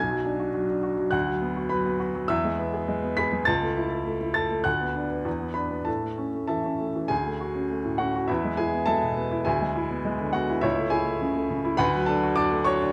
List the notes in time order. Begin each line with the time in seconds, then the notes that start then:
Already playing: B1 G#5 G#6
0.10 F#3
0.25 D4
0.39 F#4
0.54 F#3
0.69 D4
0.83 F#4
0.98 F#3
1.11 D2 F#5 F#6
1.27 F#3
1.42 B3
1.57 F#4
1.69 F#3 B4 B5
1.86 B3
2.00 F#4
2.15 F#3
2.28 E2 E5 E6
2.45 G#3
2.59 B3
2.74 G#4
2.88 G#3
3.03 B3
3.17 G#4 B5 B6
3.33 G#3
3.45 C#2 A5 A6
3.62 A3
3.77 E4
3.92 A4
4.07 A3
4.21 E4
4.34 A4 A5 A6
4.51 A3
4.64 D2 F#5 F#6
4.81 B3
4.96 D4
5.10 B4
5.25 E2
5.40 B3
5.54 D4 B4 B5
5.71 B3
5.85 A2 A4 A5
6.02 A3
6.18 C#4
6.34 A3
6.47 E3 A4 E5 A5
6.65 C#4
6.80 A3
6.96 E3
7.08 D2 G#4 G#5
7.26 A3
7.41 F#4
7.55 C#4
7.70 A3
7.85 A2
7.98 C#4 F#4 F#5
8.16 F#4
8.28 E2 E4 B4 E5
8.44 G#3
8.57 E4 G#4 G#5
8.73 B3
8.86 G#3 A4 E5 A5
9.02 B2
9.17 B3
9.31 E4
9.45 D2 G#4 E5 G#5
9.62 G#3
9.76 E4
9.90 B3
10.05 G#3
10.20 D3
10.33 B3 F#4 F#5
10.49 E4
10.61 C#2 E4 C#5 E5
10.78 A3
10.90 E4 G#4 G#5
11.06 A3
11.22 C#3
11.36 A3
11.50 C#3
11.65 E4
11.77 D2 B4 F#5 B5
11.94 F#3
12.06 D4 A4 A5
12.23 F#4
12.36 D4 D5 A5 D6
12.51 A3
12.64 F#4 C#5 C#6
12.81 D4